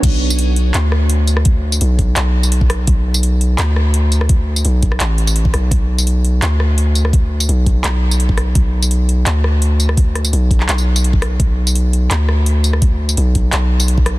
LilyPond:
<<
  \new Staff \with { instrumentName = "808-style bass" } { \clef bass \time 4/4 \key b \minor \tempo 4 = 169 b,,2 d,2~ | d,4 b,,4 b,,2 | b,,2 d,2~ | d,4 b,,4 a,,4. b,,8 |
b,,2 d,2~ | d,4 b,,4 b,,2 | b,,2 d,2~ | d,4 b,,4 b,,2 |
b,,2 d,2~ | d,4 b,,4 b,,2 | }
  \new DrumStaff \with { instrumentName = "Drums" } \drummode { \time 4/4 <cymc hh bd>8. tamb16 hh8 hh8 <hc hh>8 ss8 hh8 <hh tamb>16 ss16 | <hh bd>8. tamb16 hh8 <hh bd>8 <hc hh>8. tamb16 hh16 bd16 <hh ss>8 | <hh bd>8. tamb16 hh8 hh8 <hc hh>8 ss8 hh8 <hh tamb>16 ss16 | <hh bd>8. tamb16 hh8 <hh bd>16 ss16 <hc hh>8 hh16 tamb16 hh16 bd16 <hh ss>8 |
<hh bd>8. tamb16 hh8 hh8 <hc hh>8 ss8 hh8 <hh tamb>16 ss16 | <hh bd>8. tamb16 hh8 <hh bd>8 <hc hh>8. tamb16 hh16 bd16 <hh ss>8 | <hh bd>8. tamb16 hh8 hh8 <hc hh>8 ss8 hh8 <hh tamb>16 ss16 | <hh bd>8 <hh ss>16 tamb16 hh8 <hh bd>16 hc16 <hc hh>16 tamb8 tamb16 hh16 bd16 <hh ss>8 |
<hh bd>8. tamb16 hh8 hh8 <hc hh>8 ss8 hh8 <hh tamb>16 ss16 | <hh bd>8. tamb16 hh8 <hh bd>8 <hc hh>8. tamb16 hh16 bd16 <hh ss>8 | }
>>